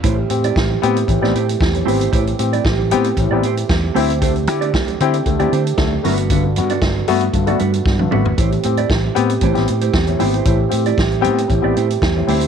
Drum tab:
HH |x-xx--xxx-xx-xox|xxxx--xxx-xx--ox|xxxx-xxxxxxx--ox|x-xx--oxxxxx----|
SD |----o----o--o---|----o-------o---|----o-------o---|----o-------o---|
T1 |----------------|----------------|----------------|-------------o--|
T2 |----------------|----------------|----------------|--------------o-|
FT |----------------|----------------|----------------|---------------o|
BD |o---o---o---o---|o---o---o---o---|o---o---o---o---|o---o---o---o---|

HH |xxxx--xxxxxx-xox|x-xx-xxxx-xx--ox|
SD |----o----o--o---|----o-------o---|
T1 |----------------|----------------|
T2 |----------------|----------------|
FT |----------------|----------------|
BD |o---o---o---o---|o---o---o---o---|